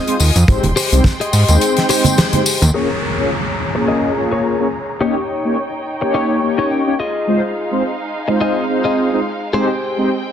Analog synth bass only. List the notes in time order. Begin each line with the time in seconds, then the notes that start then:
0.20 D#2
0.36 F2
0.48 G#1
0.64 D#1
0.92 C2
1.33 G#2
1.49 D#2
2.62 D#2